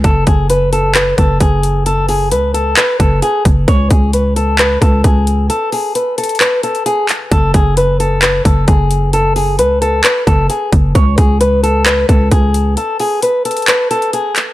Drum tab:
HH |x---x---x---x---x---x---x---x---|x---o---x---x---x---x---x---x---|x---x---x---x---x---x---x---x---|x---o---x---xxxxx---x-x-x---x---|
CP |----------------x---------------|----------------x---------------|----------------x---------------|----------------x-----------x---|
BD |o---o---------------o---o-------|--------------------o-------o---|o---o---------------o---o-------|--------------------------------|

HH |x---x---x---x---x---x---x---x---|x---o---x---x---x---x---x---x---|x---x---x---x---x---x---x---x---|x---o---x---xxxxx---x-x-x---x---|
CP |----------------x---------------|----------------x---------------|----------------x---------------|----------------x-----------x---|
BD |o---o---------------o---o-------|--------------------o-------o---|o---o---------------o---o-------|--------------------------------|